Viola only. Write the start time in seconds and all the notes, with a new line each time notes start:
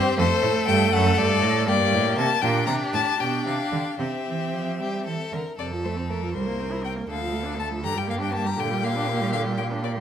Already playing: C4
0.18 A3
1.68 A#3
2.42 D4
3.20 D4
4.00 C4
5.59 C3
5.72 F3
5.85 A3
5.97 C4
6.10 A3
6.23 F3
6.35 G3
6.47 A#3
6.60 C4
6.72 E4
6.84 C4
6.96 A#3
7.09 D3
7.21 F3
7.33 A3
7.45 D4
7.57 A3
7.71 F3
7.83 D3
7.95 G3
8.08 A#3
8.20 D4
8.33 A#3
8.46 G3
8.58 D3
8.71 G3
8.84 A#3
8.97 D4
9.09 A#3
9.21 G3
9.33 D3
9.46 G3
9.59 A#3
9.72 D4
9.84 A#3
9.97 G3